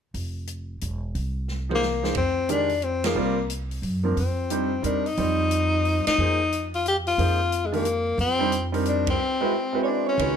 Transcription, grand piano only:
1.69 1.81 F3 medium
1.69 1.81 A#3 medium
1.69 1.81 D#4 soft
1.69 1.81 G#4 soft
1.69 1.82 C5 medium
2.02 2.15 F3 soft
2.02 2.15 A#3 soft
2.02 2.16 D#4 soft
2.02 2.16 G#4 soft
2.02 2.16 C5 medium
2.48 2.68 D#3 medium
2.48 2.69 G#3 medium
2.48 2.69 D4 medium
2.48 2.69 G4 medium
2.48 2.69 A#4 medium
3.04 3.15 F3 medium
3.04 3.15 A#3 medium
3.04 3.15 D#4 medium
3.04 3.16 G#4 medium
3.04 3.16 A#4 medium
3.16 3.36 G3 medium
3.16 3.36 C4 medium
3.16 3.36 F4 medium
3.16 3.36 A#4 medium
3.16 3.36 D5 medium
4.03 4.15 F3 medium
4.03 4.15 A#3 medium
4.03 4.16 C4 medium
4.03 4.16 D4 soft
4.03 4.16 A#4 medium
4.50 4.70 G3 medium
4.50 4.70 C4 medium
4.50 4.70 D4 soft
4.50 4.70 D#4 soft
4.50 4.71 C5 medium
4.82 5.02 G3 soft
4.82 5.03 C4 soft
4.82 5.03 D4 soft
4.82 5.03 D#4 soft
4.82 5.03 A#4 medium
5.18 6.11 G3 soft
5.18 6.11 C4 soft
5.18 6.11 D#4 soft
5.18 6.12 C5 medium
5.18 6.11 D5 soft
6.19 6.38 F3 medium
6.19 6.38 A#3 medium
6.19 6.38 D#4 medium
6.19 6.38 G#4 medium
6.19 6.39 C5 medium
7.18 7.37 F3 soft
7.18 7.37 A#3 soft
7.18 7.38 D#4 soft
7.18 7.38 G#4 soft
7.18 7.38 C5 medium
7.72 7.83 D#3 medium
7.72 7.83 G#3 medium
7.72 7.83 D4 medium
7.72 7.84 G4 medium
7.72 7.84 A#4 medium
8.39 8.50 G3 medium
8.39 8.50 C4 medium
8.39 8.51 D4 medium
8.39 8.51 D#4 medium
8.39 8.51 C5 medium
8.72 9.16 G3 medium
8.72 9.16 C4 medium
8.72 9.16 D4 medium
8.72 9.16 D#4 medium
8.72 9.17 A#4 medium
9.41 9.51 G#3 medium
9.41 9.51 C4 medium
9.41 9.52 E4 medium
9.41 9.51 F#4 medium
9.41 9.51 B4 medium
9.73 10.16 G#3 medium
9.73 10.16 C4 medium
9.73 10.17 E4 medium
9.73 10.16 F#4 medium
9.73 10.17 B4 medium
10.18 10.37 D#3 medium
10.18 10.37 G#3 soft
10.18 10.37 C#4 soft
10.18 10.37 F#4 medium
10.18 10.37 B4 medium

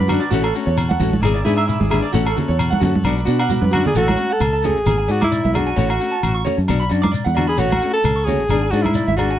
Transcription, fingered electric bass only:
0.00 0.18 F#2 medium
0.31 0.51 A1 loud
0.67 0.96 E2 medium
1.00 1.20 A1 medium
1.22 1.42 G#1 loud
1.45 1.76 G#2 medium
1.81 2.00 G#1 loud
2.14 2.33 A1 medium
2.49 2.78 E2 medium
2.81 3.01 F#2 medium
3.04 3.24 B1 loud
3.27 3.58 B2 medium
3.62 3.82 F#2 medium
3.96 4.15 A1 medium
4.40 4.76 C#2 medium
4.76 4.85 A1 medium
4.86 5.06 G#1 loud
5.09 5.40 G#2 medium
5.45 5.73 B1 medium
5.77 5.97 A1 medium
6.23 6.43 A1 medium
6.58 6.67 F#2 medium
6.69 6.89 B1 medium
6.91 7.11 F#2 medium
7.26 7.60 E2 medium
7.59 7.79 A1 medium
8.04 8.39 C#2 medium
8.39 8.48 A1 medium
8.49 8.70 G#1 loud
8.73 9.04 G#2 medium
9.08 9.37 G#1 medium

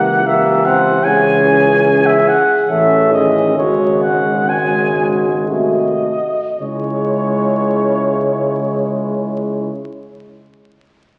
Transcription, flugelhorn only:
0.00 0.28 F#5 medium
0.27 0.67 E5 medium
0.65 1.05 F#5 loud
1.04 2.07 G#5 medium
2.06 2.29 E5 medium
2.28 2.57 F#5 medium
2.70 3.11 E5 medium
3.13 3.55 D#5 medium
3.58 4.03 C#5 medium
4.02 4.50 F#5 medium
4.49 5.14 G#5 medium
5.48 6.55 D#5 medium
6.60 9.71 C#5 medium

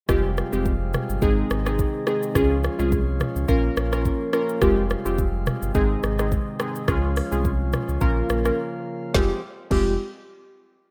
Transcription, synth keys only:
0.09 0.29 G#3 medium
0.09 0.29 C4 medium
0.09 0.29 F4 medium
0.09 0.30 G4 loud
0.52 0.71 G#3 medium
0.52 0.71 C4 medium
0.52 0.72 F4 medium
0.52 0.72 G4 medium
1.22 1.62 G#3 medium
1.22 1.62 C4 medium
1.22 1.62 D#4 medium
1.22 1.62 G#4 loud
1.66 2.04 G#3 medium
1.66 2.04 C4 medium
1.66 2.04 D#4 medium
1.66 2.04 G#4 medium
2.07 2.33 G#3 medium
2.07 2.33 C4 medium
2.07 2.33 D#4 medium
2.07 2.33 G#4 medium
2.35 2.56 G#3 medium
2.35 2.56 C#4 medium
2.35 2.56 F4 medium
2.35 2.56 G#4 loud
2.79 2.98 G#3 medium
2.79 2.98 C#4 medium
2.79 2.98 F4 medium
2.79 2.98 G#4 medium
3.48 3.88 A#3 medium
3.48 3.89 C#4 medium
3.48 3.89 F4 medium
3.48 3.89 A#4 loud
3.92 4.30 A#3 medium
3.92 4.30 C#4 medium
3.92 4.30 F4 medium
3.92 4.30 A#4 medium
4.33 4.59 A#3 medium
4.33 4.60 C#4 medium
4.33 4.60 F4 medium
4.33 4.60 A#4 medium
4.61 4.82 G#3 medium
4.61 4.82 C4 medium
4.61 4.82 F4 medium
4.61 4.82 G4 loud
5.05 5.24 G#3 medium
5.05 5.24 C4 medium
5.05 5.24 F4 medium
5.05 5.24 G4 medium
5.75 6.15 G#3 loud
5.75 6.15 C4 medium
5.75 6.15 D#4 medium
5.75 6.15 G#4 loud
6.19 6.57 G#3 medium
6.19 6.57 C4 medium
6.19 6.57 D#4 medium
6.19 6.57 G#4 medium
6.60 6.86 G#3 medium
6.60 6.86 C4 medium
6.60 6.86 D#4 medium
6.60 6.86 G#4 medium
6.88 7.08 G#3 loud
6.88 7.08 C#4 medium
6.88 7.09 F4 medium
6.88 7.09 G#4 loud
7.32 7.51 G#3 medium
7.32 7.51 C#4 medium
7.32 7.51 F4 medium
7.32 7.51 G#4 medium
8.01 8.41 A#3 medium
8.01 8.41 C#4 medium
8.01 8.41 F4 medium
8.01 8.42 A#4 loud
8.45 8.58 A#3 medium
8.45 8.58 C#4 medium
8.45 8.58 F4 medium
8.45 8.58 A#4 medium
9.14 9.31 G#3 medium
9.14 9.31 C4 medium
9.14 9.31 F4 medium
9.14 9.32 G4 medium
9.71 9.92 G#3 medium
9.71 9.93 C4 medium
9.71 9.93 F4 medium
9.71 9.93 G4 loud

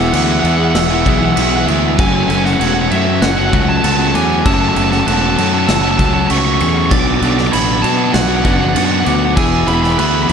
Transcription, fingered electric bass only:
0.00 0.10 E1 loud
0.13 0.42 D2 medium
0.44 0.73 E2 loud
0.74 1.03 E1 loud
1.06 1.35 B1 loud
1.37 1.65 B1 medium
1.67 1.96 D2 loud
1.99 2.27 F#1 loud
2.29 2.58 F#1 loud
2.60 2.89 E1 medium
2.91 3.20 F#2 loud
3.22 3.51 F#1 loud
3.53 3.82 C#2 loud
3.84 4.12 C#2 loud
4.15 4.43 E2 medium
4.46 4.74 F#1 loud
4.76 5.05 F#1 loud
5.07 5.36 E1 medium
5.38 5.67 F#2 medium
5.68 5.97 F#1 loud
5.99 6.28 C#2 medium
6.31 6.59 C#2 medium
6.61 6.90 E2 loud
6.91 7.20 B1 medium
7.22 7.51 B1 medium
7.54 7.82 A1 medium
7.84 8.12 B2 medium
8.14 8.43 B1 loud
8.45 8.74 F#1 loud
8.76 9.04 F#2 medium
9.07 9.35 D2 medium
9.37 9.65 E1 loud
9.68 9.96 E1 loud
9.99 10.27 D2 medium
10.30 10.33 E2 loud

